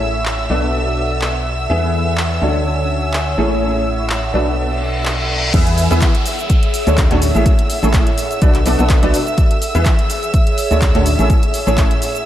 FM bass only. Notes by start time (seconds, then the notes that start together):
Already playing: A1
0.50 B1
1.70 E2
2.42 D2
3.38 A1
4.34 B1
5.54 E2
5.91 E2
6.87 D2
7.11 D2
7.35 A1
7.83 A1
8.42 B1
8.66 B1
8.79 B1
9.03 B1
9.75 E2
10.71 D2
10.95 D2
11.19 A1
11.67 A1